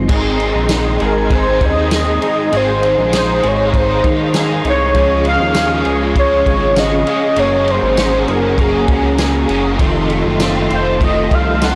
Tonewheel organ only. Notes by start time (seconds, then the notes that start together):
0.09 G#4 D#5 C6
2.53 F5
4.96 C#4 C#6
7.38 F#5 A#5
9.80 F4 A4 D#5 C6